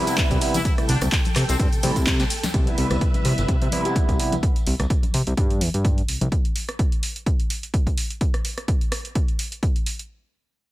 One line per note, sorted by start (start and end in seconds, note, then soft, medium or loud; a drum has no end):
0.00 0.63 B4 medium
0.00 0.63 E5 medium
0.07 0.39 C3 medium
0.07 0.39 G3 medium
0.07 0.39 B3 medium
0.07 0.39 E4 medium
0.07 closed hi-hat soft
0.07 tambourine medium
0.07 cabasa soft
0.18 kick loud
0.18 clap loud
0.18 closed hi-hat medium
0.18 ride medium
0.18 tambourine medium
0.18 cabasa soft
0.31 0.37 C2 medium
0.31 kick medium
0.31 closed hi-hat soft
0.31 tambourine soft
0.31 cabasa soft
0.41 0.56 C3 medium
0.41 0.56 G3 medium
0.41 0.56 B3 medium
0.41 0.56 E4 medium
0.41 open hi-hat medium
0.41 ride medium
0.41 cabasa medium
0.54 0.61 E3 medium
0.54 0.61 E4 medium
0.54 closed hi-hat soft
0.54 tambourine medium
0.54 high conga medium
0.54 cabasa soft
0.65 0.73 E3 medium
0.65 0.73 E4 medium
0.65 2.52 A4 medium
0.65 2.52 G5 medium
0.65 kick loud
0.65 closed hi-hat medium
0.65 ride medium
0.65 tambourine medium
0.65 cabasa soft
0.78 0.91 C3 medium
0.78 0.91 G3 medium
0.78 0.91 A3 medium
0.78 0.91 E4 medium
0.78 cross-stick medium
0.78 closed hi-hat soft
0.78 tambourine soft
0.89 0.97 C2 medium
0.89 0.99 D3 medium
0.89 0.99 D4 medium
0.89 open hi-hat loud
0.89 ride medium
0.89 cabasa medium
1.01 1.08 C2 loud
1.01 cross-stick medium
1.01 closed hi-hat soft
1.01 tambourine medium
1.01 low conga medium
1.01 cabasa soft
1.12 kick loud
1.12 clap loud
1.12 closed hi-hat medium
1.12 ride medium
1.12 tambourine medium
1.12 cabasa soft
1.25 closed hi-hat soft
1.25 tambourine soft
1.25 high conga medium
1.25 cabasa soft
1.36 1.44 C3 medium
1.36 cross-stick medium
1.36 clap medium
1.36 open hi-hat medium
1.36 ride medium
1.36 cabasa medium
1.49 1.56 C2 loud
1.49 1.56 C3 medium
1.49 1.56 C4 medium
1.49 closed hi-hat soft
1.49 tambourine medium
1.49 cabasa soft
1.59 1.68 G2 loud
1.59 1.68 C3 medium
1.59 1.68 C4 medium
1.59 kick loud
1.59 closed hi-hat medium
1.59 ride medium
1.59 cabasa soft
1.72 1.81 C3 soft
1.72 closed hi-hat soft
1.72 tambourine soft
1.72 cabasa soft
1.83 2.05 C3 loud
1.83 1.91 C3 loud
1.83 2.05 G3 medium
1.83 2.06 A3 medium
1.83 2.06 E4 loud
1.83 open hi-hat loud
1.83 ride medium
1.83 high conga medium
1.83 cabasa medium
1.96 2.24 C3 medium
1.96 kick medium
1.96 closed hi-hat soft
1.96 tambourine medium
1.96 cabasa soft
2.07 kick loud
2.07 snare medium
2.07 clap loud
2.07 closed hi-hat medium
2.07 ride medium
2.07 tambourine medium
2.07 cabasa soft
2.19 snare medium
2.19 closed hi-hat soft
2.19 tambourine soft
2.19 cabasa soft
2.30 open hi-hat medium
2.30 ride medium
2.30 cabasa medium
2.43 snare medium
2.43 closed hi-hat soft
2.43 tambourine medium
2.43 high conga medium
2.43 cabasa soft
2.54 2.70 C2 loud
2.54 4.41 B4 medium
2.54 4.41 E5 medium
2.54 kick loud
2.54 closed hi-hat medium
2.66 3.69 C3 medium
2.66 3.70 G3 medium
2.66 3.70 B3 medium
2.66 3.70 E4 loud
2.66 closed hi-hat soft
2.66 tambourine soft
2.78 2.86 C2 medium
2.78 open hi-hat loud
2.90 2.97 C2 medium
2.90 cross-stick medium
2.90 closed hi-hat soft
2.90 tambourine medium
2.90 low conga medium
3.01 kick loud
3.01 closed hi-hat medium
3.01 tambourine medium
3.14 closed hi-hat soft
3.14 tambourine soft
3.14 high conga medium
3.25 3.33 C3 medium
3.25 open hi-hat medium
3.38 3.45 G1 loud
3.38 closed hi-hat soft
3.38 tambourine medium
3.48 3.57 C3 loud
3.48 kick loud
3.48 closed hi-hat medium
3.62 3.68 C3 medium
3.62 closed hi-hat soft
3.62 tambourine soft
3.71 3.83 C3 medium
3.71 3.83 G3 medium
3.71 3.83 B3 medium
3.71 3.83 E4 loud
3.71 open hi-hat loud
3.71 high conga medium
3.85 4.17 C3 medium
3.85 4.17 G3 medium
3.85 4.17 B3 medium
3.85 4.17 E4 medium
3.85 closed hi-hat soft
3.85 tambourine medium
3.95 kick loud
3.95 closed hi-hat medium
3.95 tambourine medium
4.09 4.15 C2 loud
4.09 kick medium
4.09 closed hi-hat soft
4.09 tambourine soft
4.19 4.34 C3 medium
4.19 4.34 G3 medium
4.19 4.34 B3 medium
4.19 4.34 E4 medium
4.19 open hi-hat medium
4.32 closed hi-hat soft
4.32 tambourine medium
4.32 high conga medium
4.43 kick loud
4.43 closed hi-hat medium
4.43 tambourine medium
4.56 closed hi-hat soft
4.56 tambourine soft
4.67 4.75 C2 medium
4.67 open hi-hat loud
4.79 4.86 C2 loud
4.79 cross-stick medium
4.79 closed hi-hat soft
4.79 tambourine medium
4.79 low conga medium
4.90 kick loud
4.90 closed hi-hat medium
4.90 tambourine medium
5.03 closed hi-hat soft
5.03 tambourine soft
5.03 high conga medium
5.14 5.22 C3 medium
5.14 open hi-hat medium
5.27 5.34 C2 loud
5.27 closed hi-hat soft
5.27 tambourine medium
5.37 5.63 G2 loud
5.37 kick loud
5.37 closed hi-hat medium
5.37 tambourine medium
5.50 closed hi-hat soft
5.50 tambourine soft
5.61 5.69 E2 loud
5.61 open hi-hat loud
5.61 high conga medium
5.74 6.02 G2 medium
5.74 closed hi-hat soft
5.74 tambourine medium
5.85 kick loud
5.85 closed hi-hat medium
5.98 closed hi-hat soft
5.98 tambourine soft
6.08 6.19 C2 soft
6.08 open hi-hat medium
6.21 6.28 C2 medium
6.21 closed hi-hat soft
6.21 tambourine medium
6.21 high conga medium
6.32 kick loud
6.32 closed hi-hat medium
6.45 closed hi-hat soft
6.56 open hi-hat loud
6.69 cross-stick medium
6.69 closed hi-hat soft
6.79 kick loud
6.79 closed hi-hat medium
6.92 closed hi-hat soft
7.03 open hi-hat loud
7.16 closed hi-hat soft
7.26 kick loud
7.26 closed hi-hat medium
7.40 closed hi-hat soft
7.50 open hi-hat loud
7.63 closed hi-hat soft
7.74 kick loud
7.74 closed hi-hat medium
7.87 kick medium
7.87 closed hi-hat soft
7.98 open hi-hat medium
8.10 closed hi-hat soft
8.21 kick loud
8.21 closed hi-hat medium
8.34 cross-stick medium
8.34 closed hi-hat soft
8.45 open hi-hat loud
8.58 cross-stick medium
8.58 closed hi-hat soft
8.68 kick loud
8.68 closed hi-hat medium
8.81 closed hi-hat soft
8.92 cross-stick medium
8.92 open hi-hat medium
9.05 closed hi-hat soft
9.15 kick loud
9.15 closed hi-hat medium
9.28 closed hi-hat soft
9.39 open hi-hat loud
9.52 closed hi-hat soft
9.63 kick loud
9.63 closed hi-hat medium
9.76 closed hi-hat soft
9.86 open hi-hat medium
9.99 closed hi-hat soft